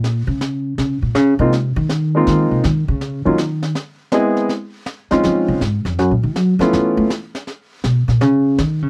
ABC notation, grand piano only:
X:1
M:4/4
L:1/8
Q:"Swing" 1/4=161
K:Ab
V:1 name="Grand piano"
z6 z [A,B,CEF] | z3 [A,B,CEF]3 z2 | z [_G,B,DEF] z4 [A,_C=C=EA]2 | [K:Bbm] z3 [A,CDEF]3 z2 |
z3 [=A,_CD_F=F]3 z2 | z8 |]